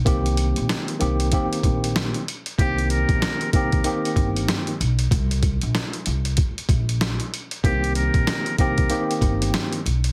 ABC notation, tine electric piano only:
X:1
M:4/4
L:1/8
Q:"Swing 16ths" 1/4=95
K:Cm
V:1 name="Tine electric piano"
[E,B,CG]3 [E,B,CG] [E,B,CG]3 z | [E,B,CG]3 [E,B,CG] [E,B,CG]3 z | z8 | [E,B,CG]3 [E,B,CG] [E,B,CG]3 z |]